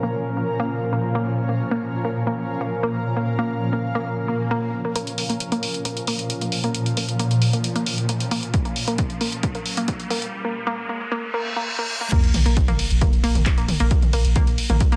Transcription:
Already playing: synth drone A#2 F3, ambient pad C#4 A#4 F5
0.03 synth arpeggio sound A#3
0.37 synth arpeggio sound A#3
0.60 synth arpeggio sound A#3
0.93 synth arpeggio sound A#3
1.15 synth arpeggio sound A#3
1.49 synth arpeggio sound A#3
1.71 synth arpeggio sound A#3
2.05 synth arpeggio sound A#3
2.27 synth arpeggio sound A#3
2.61 synth arpeggio sound A#3
2.83 synth arpeggio sound A#3
3.17 synth arpeggio sound A#3
3.39 synth arpeggio sound A#3
3.73 synth arpeggio sound A#3
3.95 synth arpeggio sound A#3
4.06 swell
4.28 synth arpeggio sound A#3
4.51 synth arpeggio sound A#3
4.85 synth arpeggio sound A#3
4.96 synth drone A#2 F3, synth arpeggio sound A#3, closed hi-hat, riser
5.07 closed hi-hat
5.18 open hi-hat
5.29 synth arpeggio sound A#3, closed hi-hat
5.40 closed hi-hat
5.52 synth arpeggio sound A#3, closed hi-hat
5.63 open hi-hat
5.74 closed hi-hat
5.85 synth arpeggio sound A#3, closed hi-hat
5.97 closed hi-hat
6.07 synth arpeggio sound A#3, open hi-hat
6.19 closed hi-hat
6.30 closed hi-hat
6.41 synth arpeggio sound A#3, closed hi-hat
6.52 open hi-hat
6.64 synth arpeggio sound A#3, closed hi-hat
6.75 closed hi-hat
6.86 closed hi-hat
6.97 synth arpeggio sound A#3, open hi-hat
7.09 closed hi-hat
7.19 synth arpeggio sound A#3, closed hi-hat
7.31 closed hi-hat
7.42 open hi-hat
7.53 synth arpeggio sound A#3, closed hi-hat
7.64 closed hi-hat
7.76 synth arpeggio sound A#3, closed hi-hat
7.86 open hi-hat
7.98 closed hi-hat
8.09 synth arpeggio sound A#3, closed hi-hat
8.20 closed hi-hat
8.31 synth arpeggio sound A#3, open hi-hat
8.43 closed hi-hat
8.54 kick, closed hi-hat
8.65 synth arpeggio sound A#3, closed hi-hat
8.76 open hi-hat
8.88 synth arpeggio sound A#3, closed hi-hat
8.98 kick, closed hi-hat
9.10 closed hi-hat
9.21 synth arpeggio sound A#3, open hi-hat
9.32 closed hi-hat
9.43 kick, closed hi-hat
9.55 synth arpeggio sound A#3, closed hi-hat
9.66 open hi-hat
9.77 synth arpeggio sound A#3, closed hi-hat
9.88 kick, closed hi-hat
10.00 closed hi-hat
10.10 synth arpeggio sound A#3, open hi-hat
10.22 closed hi-hat
10.44 synth arpeggio sound A#3
10.67 synth arpeggio sound A#3
10.89 synth arpeggio sound A#3
11.12 synth arpeggio sound A#3
11.22 reverse cymbal
11.34 synth arpeggio sound A#3
11.56 synth arpeggio sound A#3
11.79 synth arpeggio sound A#3
12.01 synth arpeggio sound A#3
12.12 synth arpeggio sound A#3, kick, closed hi-hat, ride, crash, sub drop
12.23 closed hi-hat
12.34 sub bass A#1, open hi-hat, mid tom, ride
12.46 sub bass A#1, synth arpeggio sound A#3, closed hi-hat
12.57 kick, closed hi-hat
12.68 sub bass A#1, synth arpeggio sound A#3, closed hi-hat, mid tom
12.79 open hi-hat, ride
12.91 sub bass A#1, closed hi-hat
13.01 synth arpeggio sound A#3, kick, closed hi-hat, mid tom, ride
13.13 closed hi-hat
13.24 sub bass A#1, synth arpeggio sound A#3, open hi-hat, ride
13.35 sub bass A#1, closed hi-hat, mid tom
13.46 kick, clap, closed hi-hat, ride
13.58 sub bass A#1, synth arpeggio sound A#3, closed hi-hat
13.68 open hi-hat, mid tom, ride
13.80 sub bass A#1, synth arpeggio sound A#3, closed hi-hat
13.91 kick, closed hi-hat, ride
14.02 closed hi-hat, mid tom
14.13 sub bass A#1, synth arpeggio sound A#3, open hi-hat, ride
14.25 sub bass A#1, closed hi-hat
14.36 synth arpeggio sound A#3, kick, closed hi-hat, mid tom, ride
14.47 sub bass A#1, closed hi-hat
14.58 open hi-hat, ride
14.70 sub bass A#1, synth arpeggio sound A#3, closed hi-hat, mid tom
14.80 kick, closed hi-hat, ride
14.92 synth arpeggio sound A#3, closed hi-hat

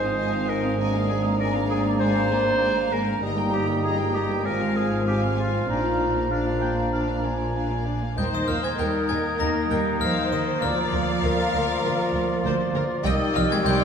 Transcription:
Already playing: double bass section G#1, cello section G#2, french horn section F3 D#4, bassoon F3, clarinet C5, oboe D#5, flute section G#5
0.03 viola section C4, violin section C5 F5
0.17 viola section D#4, violin section D#5 G#5
0.32 viola section C4, violin section C5 F5
0.48 viola section D#4, clarinet A#4, violin section D#5 G#5
0.64 viola section C4, violin section C5 F5
0.78 viola section G#3, french horn section A#3 D4, violin section D5 G#5, flute section A#5
0.93 viola section A#3, violin section A#4 F5
1.08 viola section G#3, clarinet G#4, violin section D5 G#5
1.23 viola section A#3, violin section A#4 F5
1.38 viola section G#3, clarinet A#4, violin section D5 G#5, oboe D5
1.53 viola section A#3, violin section A#4 F5
1.69 viola section G#3, clarinet G#4, violin section D5 G#5
1.84 viola section A#3, violin section A#4 F5
1.99 viola section G#3, clarinet C5, violin section D5 G#5
2.15 viola section A#3, violin section A#4 F5
2.30 viola section G#3, violin section D5 G#5
2.45 viola section A#3, violin section A#4 F5
2.60 viola section G#3, violin section D5 G#5
2.76 viola section A#3, violin section A#4 F5
2.91 viola section G#3, clarinet A#4, violin section D5 G#5
3.06 viola section A#3, violin section A#4 F5
3.21 double bass section G1, cello section G2, bassoon G3, viola section G3, french horn section A#3 D#4, violin section D#5 A#5, oboe D#5
3.36 viola section A#3, violin section A#4 G5
3.52 viola section G3, clarinet G4, violin section D#5 A#5
3.69 viola section A#3, violin section A#4 G5
3.84 viola section G3, clarinet G#4, violin section D#5 A#5
3.99 viola section A#3, violin section A#4 G5
4.13 viola section G3, clarinet G4, violin section D#5 A#5
4.28 viola section A#3, violin section A#4 G5
4.44 double bass section G#1, cello section G#2, bassoon F3, viola section G#3, french horn section C4 F4, clarinet A#4, violin section F5 G#5, oboe F5, flute section G#5
4.58 viola section C4, violin section F5 G#5
4.75 viola section G#3, clarinet G#4, violin section F5 G#5
4.90 viola section C4, violin section F5 G#5
5.06 viola section G#3, clarinet G4, violin section F5 G#5
5.21 viola section C4, violin section F5 G#5
5.37 viola section G#3, clarinet F4, violin section F5 G#5
5.52 viola section C4, violin section F5 G#5
5.67 double bass section A#1, cello section A#2, french horn section A#3 F4, viola section D4, clarinet D#4, violin section D5 F5, flute section A#5
5.83 viola section A#3, violin section D5 F5
5.99 viola section D4, violin section D5 F5
6.15 viola section A#3, violin section D5 F5
6.30 french horn section A#3 F4, viola section D4, clarinet D4, violin section D5 F5, oboe F5
6.47 viola section A#3, violin section D5 F5
6.61 viola section D4, violin section D5 F5, oboe G5
6.77 viola section A#3, violin section D5 F5
6.92 viola section D4, violin section D5 F5, oboe F5
7.08 viola section A#3, violin section D5 F5
7.24 viola section D4, violin section D5 F5, oboe G#5
7.40 viola section A#3, violin section D5 F5
7.55 viola section D4, violin section D5 F5
7.70 viola section A#3, violin section D5 F5
7.86 viola section D4, violin section D5 F5
8.02 viola section A#3, violin section D5 F5
8.17 double bass section D#2, bassoon D#3, cello section G3, french horn section A#3 D#4, violin section A#4 G5, clarinet A#4, viola section C5, oboe D#5, flute section A#5, glockenspiel G6
8.32 cello section D#3, violin section D#5, glockenspiel D#6
8.48 double bass section D#2, cello section F3, violin section A#4 F5, glockenspiel F6
8.63 cello section G#3, violin section G#5, glockenspiel G#6
8.78 double bass section D#2, cello section G3, viola section A#4, violin section A#4 G5, glockenspiel G6
9.09 double bass section D#2, cello section G#3, violin section A#4 G#5, glockenspiel G#6
9.39 double bass section D#2, cello section A#3, violin section A#4 A#5, glockenspiel A#6
9.70 double bass section D#2, cello section G3, violin section A#4 G5, glockenspiel G6
10.00 double bass section D#2, cello section F3, violin section A#4 F5, viola section C5, glockenspiel F6
10.31 double bass section D#2, cello section D#3, violin section A#4 D#5, glockenspiel D#6
10.61 double bass section D2, bassoon F3, cello section F3, french horn section F4, clarinet F4, violin section A#4 F5, viola section D5, oboe D5, glockenspiel F6
10.91 double bass section D2, violin section A#4
11.22 double bass section D2, violin section A#4, viola section A#4
11.52 double bass section D2, violin section A#4
11.84 double bass section D2, violin section A#4
12.14 double bass section D2, violin section A#4
12.44 double bass section D2, violin section A#4, viola section C5
12.74 double bass section D2, viola section A#4, violin section A#4
13.04 double bass section C2, bassoon D#3, french horn section G3 D#4, cello section G3, clarinet C4, viola section D#5, violin section D#5 G5, flute section G5, glockenspiel G6
13.34 double bass section C2, cello section F3, violin section D#5 F5, glockenspiel F6
13.50 cello section G#3, violin section G#5, glockenspiel G#6
13.64 double bass section C2, cello section G3, oboe C5, viola section D5, violin section D#5 G5, glockenspiel G6

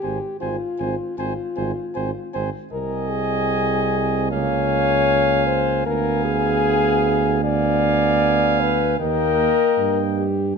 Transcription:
Already playing: french horn G4
0.02 tuba G#1, trombone C4, flugelhorn C5, trumpet G#5
0.40 tuba G#1, trombone C4, french horn F4, flugelhorn C5, trumpet G#5
0.79 tuba G#1, trombone C4, flugelhorn C5, trumpet G#5
1.18 tuba G#1, trombone C4, french horn F4, flugelhorn C5, trumpet G#5
1.56 tuba G#1, trombone C4, flugelhorn C5, trumpet G#5
1.95 tuba G#1, trombone C4, flugelhorn C5, trumpet G#5
2.33 tuba G#1, trombone C4, flugelhorn C5, trumpet G#5
2.72 tuba C2, trombone C4, french horn A#4, flugelhorn D#5, trumpet G#5
3.11 french horn G#4
4.31 tuba C#2, trombone A#3, french horn C#5, flugelhorn F5, trumpet G#5
5.47 french horn C5
5.86 tuba D2, trombone B3, french horn A#4, flugelhorn F5, trumpet G#5
6.25 french horn G#4
7.44 trombone B3, french horn D5, flugelhorn F5, trumpet G#5
8.61 french horn B4
8.99 tuba D#2, trombone A#3, french horn A#4, flugelhorn D#5, trumpet G5
9.78 tuba G2
10.16 french horn G4

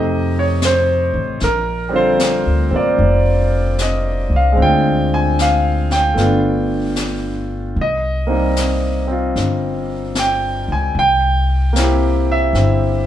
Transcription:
Already playing: upright bass F2, grand piano C3 A3 D#4 G4 D#5
0.39 grand piano C#5
0.62 grand piano C5, snare, hi-hat pedal
1.14 upright bass A1
1.40 upright bass A#1, grand piano A#4, brush sweep, snare
1.89 grand piano D3 G3 C4
1.94 grand piano F4 C5
2.20 snare, hi-hat pedal
2.46 upright bass D2
2.71 upright bass A1, grand piano A#3 C4
2.76 grand piano D5
2.99 upright bass F1, brush sweep
3.79 grand piano D#5, snare, hi-hat pedal
4.30 upright bass C2
4.36 grand piano F5
4.52 grand piano G#3 C4
4.57 upright bass D2, grand piano D4, brush sweep
4.62 grand piano F4 G5
5.14 grand piano G#5
5.39 grand piano F5, snare, hi-hat pedal
5.91 grand piano G5, snare
6.14 upright bass G1, grand piano A3 B3 D4, brush sweep, snare
6.19 grand piano F4
6.96 snare, hi-hat pedal
7.75 upright bass C2, brush sweep
7.81 grand piano D#5
8.27 grand piano A#3 C4 D#4
8.32 grand piano G3
8.57 snare, hi-hat pedal
9.07 grand piano C4 F4
9.36 upright bass G1, brush sweep, snare
10.15 snare, hi-hat pedal
10.19 grand piano G5
10.68 upright bass C#2, grand piano G#5
10.95 upright bass C2, brush sweep
10.99 grand piano G5
11.73 grand piano A#3 C4, snare, hi-hat pedal
11.79 grand piano E4 G4
12.32 grand piano E5
12.53 upright bass G1, grand piano C4, brush sweep, snare
12.59 grand piano E4

